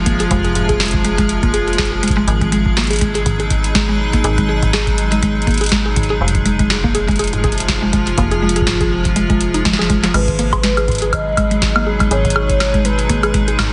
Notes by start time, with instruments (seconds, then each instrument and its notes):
Already playing: fm bass F1, ambient pad C3 F3 G#3 F4 G#4
0.06 synth arpeggio sound A#3, kick, closed hi-hat
0.20 synth arpeggio sound G#4, closed hi-hat
0.31 fm bass F1, synth arpeggio sound G#3, kick, closed hi-hat
0.45 synth arpeggio sound G#4, closed hi-hat
0.55 synth arpeggio sound G#2, closed hi-hat
0.69 synth arpeggio sound G#4, kick, closed hi-hat
0.80 snare, closed hi-hat
0.83 closed hi-hat
0.85 closed hi-hat
0.88 closed hi-hat
0.91 kick, closed hi-hat
1.05 synth arpeggio sound G#3, closed hi-hat
1.18 synth arpeggio sound G#3, kick, closed hi-hat
1.29 closed hi-hat
1.43 synth arpeggio sound A#3, kick, closed hi-hat
1.54 synth arpeggio sound G#4, closed hi-hat
1.68 synth arpeggio sound G#4, closed hi-hat
1.73 closed hi-hat
1.78 synth arpeggio sound G#4, kick, snare, closed hi-hat
1.85 closed hi-hat
1.92 synth arpeggio sound G#4
2.03 synth arpeggio sound G#3, closed hi-hat
2.08 kick, closed hi-hat
2.11 closed hi-hat
2.17 synth arpeggio sound G#3
2.27 fm bass G#1, ambient pad B2, closed hi-hat
2.41 ambient pad F#3, synth arpeggio sound G#3, kick, closed hi-hat
2.52 synth arpeggio sound G#3, closed hi-hat
2.59 ambient pad D#4
2.66 kick
2.77 synth arpeggio sound A#3, snare, closed hi-hat
2.80 closed hi-hat
2.84 closed hi-hat
2.87 synth arpeggio sound G#4, closed hi-hat
2.91 closed hi-hat
2.93 closed hi-hat
2.96 closed hi-hat
2.99 synth arpeggio sound G#3, kick, closed hi-hat
3.01 closed hi-hat
3.15 synth arpeggio sound G#4, closed hi-hat
3.26 synth arpeggio sound G#2, kick, closed hi-hat
3.40 synth arpeggio sound G#4, closed hi-hat
3.50 kick, closed hi-hat
3.64 closed hi-hat
3.75 synth arpeggio sound G#3, kick, snare, closed hi-hat
3.89 synth arpeggio sound G#3
4.13 synth arpeggio sound A#3, kick, closed hi-hat
4.24 fm bass G#1, synth arpeggio sound G#4, closed hi-hat
4.38 synth arpeggio sound G#3, kick, closed hi-hat
4.49 synth arpeggio sound G#4
4.63 synth arpeggio sound G#2, kick, closed hi-hat
4.73 synth arpeggio sound G#4, snare, closed hi-hat
4.87 kick, closed hi-hat
4.98 closed hi-hat
5.12 synth arpeggio sound G#3, closed hi-hat
5.23 synth arpeggio sound G#3, kick, closed hi-hat
5.42 closed hi-hat
5.47 synth arpeggio sound A#3, kick, closed hi-hat
5.51 closed hi-hat
5.54 closed hi-hat
5.58 closed hi-hat
5.61 synth arpeggio sound G#4, closed hi-hat
5.64 closed hi-hat
5.66 closed hi-hat
5.69 synth arpeggio sound G#3, kick, snare, closed hi-hat
5.86 synth arpeggio sound G#4
5.96 synth arpeggio sound G#2, kick, closed hi-hat
6.03 closed hi-hat
6.10 synth arpeggio sound G#4
6.21 fm bass F1, ambient pad C3
6.28 closed hi-hat
6.34 ambient pad F3, kick, closed hi-hat
6.45 synth arpeggio sound G#3, closed hi-hat
6.59 synth arpeggio sound G#3, kick, closed hi-hat
6.70 snare, closed hi-hat
6.84 synth arpeggio sound A#3, ambient pad F4, kick
6.95 synth arpeggio sound G#4, closed hi-hat
7.08 synth arpeggio sound G#3, kick, closed hi-hat
7.11 closed hi-hat
7.16 synth arpeggio sound G#4, closed hi-hat
7.19 closed hi-hat
7.24 closed hi-hat
7.27 closed hi-hat
7.33 synth arpeggio sound G#2, closed hi-hat
7.44 synth arpeggio sound G#4, kick, closed hi-hat
7.52 closed hi-hat
7.58 closed hi-hat
7.60 closed hi-hat
7.68 kick, snare, closed hi-hat
7.82 synth arpeggio sound G#3
7.93 synth arpeggio sound G#3, kick, closed hi-hat
8.07 closed hi-hat
8.18 fm bass F1, synth arpeggio sound A#3, kick, closed hi-hat
8.31 synth arpeggio sound G#4, closed hi-hat
8.42 synth arpeggio sound G#3
8.49 closed hi-hat
8.56 synth arpeggio sound G#4, closed hi-hat
8.61 kick
8.67 synth arpeggio sound G#2, snare, closed hi-hat
8.81 synth arpeggio sound G#4, kick, closed hi-hat
9.05 kick, closed hi-hat
9.16 synth arpeggio sound G#3, closed hi-hat
9.30 synth arpeggio sound G#3, kick, closed hi-hat
9.41 closed hi-hat
9.54 synth arpeggio sound D#4, closed hi-hat
9.65 synth arpeggio sound G#3, kick, snare, closed hi-hat, high tom
9.73 snare
9.79 synth arpeggio sound G#4, snare, high tom
9.90 synth arpeggio sound G#3, kick, closed hi-hat
10.03 synth arpeggio sound F3, snare, closed hi-hat
10.14 fm bass G#1, ambient pad B2, synth arpeggio sound G#3, soft synth lead B4, closed hi-hat, crash, high woodblock
10.27 ambient pad F#3, kick, closed hi-hat
10.34 ambient pad G#4
10.39 synth arpeggio sound A#3, closed hi-hat
10.49 ambient pad G#3, synth arpeggio sound G#4, kick, closed hi-hat, high woodblock
10.63 synth arpeggio sound G#3, snare, closed hi-hat
10.73 ambient pad D#4
10.77 synth arpeggio sound G#4, closed hi-hat, high woodblock
10.88 synth arpeggio sound G#2, kick, closed hi-hat
10.92 closed hi-hat
10.95 closed hi-hat
10.98 closed hi-hat
11.02 synth arpeggio sound G#4, closed hi-hat
11.13 soft synth lead D#5, kick, closed hi-hat, high woodblock
11.37 synth arpeggio sound G#3, kick, closed hi-hat, high woodblock
11.51 synth arpeggio sound G#3, closed hi-hat
11.62 kick, snare, closed hi-hat
11.76 synth arpeggio sound A#3, high woodblock
11.87 synth arpeggio sound G#4
12.00 synth arpeggio sound G#3, kick, closed hi-hat, high woodblock
12.11 fm bass G#1, synth arpeggio sound G#4, soft synth lead C#5, closed hi-hat
12.25 synth arpeggio sound G#2, kick, closed hi-hat
12.30 closed hi-hat
12.36 synth arpeggio sound G#4, high woodblock
12.49 kick, closed hi-hat
12.60 snare, closed hi-hat, high woodblock
12.74 synth arpeggio sound G#3, kick, closed hi-hat
12.85 synth arpeggio sound G#3, soft synth lead B4, closed hi-hat
12.99 closed hi-hat
13.09 synth arpeggio sound A#3, kick, closed hi-hat
13.23 synth arpeggio sound G#4, closed hi-hat, high woodblock
13.34 synth arpeggio sound G#3, kick, closed hi-hat
13.48 synth arpeggio sound G#4, closed hi-hat
13.59 synth arpeggio sound G#2, kick, snare, closed hi-hat, high woodblock